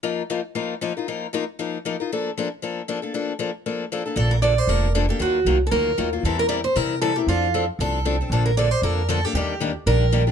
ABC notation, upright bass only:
X:1
M:4/4
L:1/8
Q:"Swing" 1/4=232
K:Bb
V:1 name="Upright bass" clef=bass
z8 | z8 | z8 | z8 |
B,,,4 F,,,4 | E,,2 C,,2 D,,2 E,,2 | =E,,4 C,4 | F,,4 C,,4 |
B,,,4 F,,4 | E,,4 B,,,4 |]